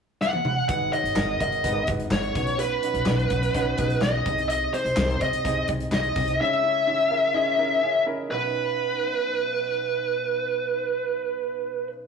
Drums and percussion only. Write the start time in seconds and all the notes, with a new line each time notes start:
0.21 snare
0.33 high tom
0.45 mid tom
0.69 kick, closed hi-hat
0.93 closed hi-hat
1.05 closed hi-hat
1.16 snare, clap
1.40 kick, closed hi-hat
1.52 closed hi-hat
1.64 kick, closed hi-hat
1.87 kick, closed hi-hat
2.00 closed hi-hat
2.11 snare, clap
2.23 closed hi-hat
2.35 kick, closed hi-hat
2.47 closed hi-hat
2.59 closed hi-hat
2.83 closed hi-hat
2.95 closed hi-hat
3.06 snare, clap
3.19 closed hi-hat
3.30 kick, closed hi-hat
3.43 closed hi-hat
3.54 kick, closed hi-hat
3.78 kick, closed hi-hat
3.90 closed hi-hat
4.01 snare, clap
4.26 kick, closed hi-hat
4.38 closed hi-hat
4.50 closed hi-hat
4.74 closed hi-hat
4.86 closed hi-hat
4.96 snare, clap
5.10 closed hi-hat
5.21 kick, closed hi-hat
5.33 closed hi-hat
5.45 kick, closed hi-hat
5.68 kick, closed hi-hat
5.80 closed hi-hat
5.92 snare, clap
6.03 closed hi-hat
6.16 kick, open hi-hat
6.28 closed hi-hat